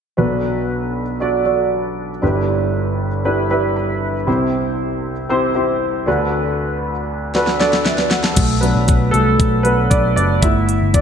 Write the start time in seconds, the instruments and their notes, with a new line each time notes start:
0.17 grand piano B1 B2 D4 F#4 A4 B4
1.20 grand piano D4 F#4 A4 D5
1.45 grand piano D4 F#4 A4 D5
2.22 grand piano G1 G2 D4 E4 G4 B4
3.25 grand piano D4 E4 G4 B4
3.50 grand piano D4 E4 G4 B4 E5
3.76 grand piano B5
4.27 grand piano C2 C3 C4 E4 G4 C5
5.29 grand piano C4 E4 G4 C5
5.55 grand piano C4 E4 G4 C5
6.06 grand piano D2 D3 D4 F#4 A4 B4
7.35 grand piano D4 F#4 A4 B4, snare
7.47 snare
7.59 grand piano D4 F#4 A4 D5, snare
7.73 snare
7.86 grand piano E5, snare
7.98 grand piano B4 D5, snare
8.10 grand piano D5 F#5, snare
8.23 grand piano F#5 A5, snare
8.34 picked electric bass B1, grand piano A3 A4, kick, closed hi-hat, crash
8.61 grand piano F#3 A3 B3 D4 B4, closed hi-hat
8.76 picked electric bass B1
8.88 kick, closed hi-hat
9.11 picked electric bass C2, grand piano A3 A4, closed hi-hat
9.39 picked electric bass B1, kick, closed hi-hat
9.63 grand piano F#3 A3 B3 D4 B4, closed hi-hat
9.90 picked electric bass B1, grand piano D4 D5, kick, closed hi-hat
10.16 picked electric bass F#1, grand piano D4 D5, closed hi-hat
10.42 picked electric bass G1, grand piano A3 B3 E4 E5, kick, closed hi-hat
10.69 closed hi-hat
10.82 picked electric bass G1
10.94 grand piano D4 D5, kick, closed hi-hat